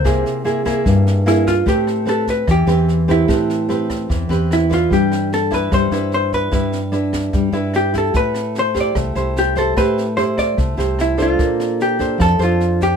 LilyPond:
<<
  \new Staff \with { instrumentName = "Hollow-body jazz guitar" } { \time 4/4 \key c \phrygian \tempo 4 = 148 c''8 r2 r8 e'8 f'8 | \key a \minor g'4 a'8 b'8 g'4. e'8~ | e'2~ e'8 r8 e'8 f'8 | g'4 a'8 b'8 c''4 c''8 b'8~ |
b'2~ b'8 r8 g'8 a'8 | b'4 c''8 d''8 r4 g'8 a'8 | b'4 c''8 d''8 r4 e'8 f'8~ | f'4 g'4 a'8 f'4 g'8 | }
  \new Staff \with { instrumentName = "Nylon-string guitar" } { \time 4/4 \key c \phrygian << { <bes e' aes'>4 <bes e' aes'>8 <bes e' aes'>4. <bes e' aes'>8 r8 | \key a \minor <c' g' b'>4 <c' g' b'>4 r8 <c' g' b'>4 <c' g' b'>8 | <c' g' b'>4 <c' g' b'>4. <c' g' b'>4 <d' e' b'>8~ | <d' e' b'>4 r8 <d' e' b'>4 <d' e' b'>4. |
<d' e' b'>8 r8 <d' e' b'>4. <d' e' b'>4 <e' g'>8~ | <e' g'>4. <e' g' c''>4 <e' g' c''>4 <e' g' c''>8 | <e' g' c''>8 r8 <e' g' c''>4. <e' g' c''>4 <d' a' c''>8~ | <d' a' c''>4. <d' a' c''>4 <d' a' c''>4. | } \\ { c2 g,2 | a2 e2 | a2 e2 | g2 g2 |
g2 g2 | a2 a2 | a2 a2 | bes2 f2 | } >> }
  \new Staff \with { instrumentName = "Fingered electric bass" } { \clef bass \time 4/4 \key c \phrygian c,8 r4. g,2 | \key a \minor a,2 e,8 e,4. | a,2 e,8 e,4. | g,2 g,8 g,4. |
g,2 g,8 g,4. | a,2 c,8 c,4. | a,2 c,8 c,4. | bes,2 f,8 f,4. | }
  \new DrumStaff \with { instrumentName = "Drums" } \drummode { \time 4/4 <bd ss sn>8 sn8 sn8 <bd ss sn>8 <bd sn>8 sn8 <ss sn>8 <bd sn>8 | <bd sn>8 <ss sn>8 sn8 <bd sn>8 <bd ss sn>8 sn8 sn8 <bd sn>8 | <bd ss sn>8 sn8 sn8 <bd ss sn>8 <bd sn>8 sn8 <ss sn>8 <bd sn>8 | <bd sn>8 <ss sn>8 sn8 <bd sn>8 <bd ss sn>8 sn8 sn8 <bd sn>8 |
<bd ss sn>8 sn8 sn8 <bd ss sn>8 <bd sn>8 sn8 <ss sn>8 <bd sn>8 | <bd sn>8 <ss sn>8 sn8 <bd sn>8 <bd ss sn>8 sn8 sn8 <bd sn>8 | <bd ss sn>8 sn8 sn8 <bd ss sn>8 <bd sn>8 sn8 <ss sn>8 <bd sn>8 | <bd sn>8 <ss sn>8 sn8 <bd sn>8 <bd ss sn>8 sn8 sn8 <bd sn>8 | }
>>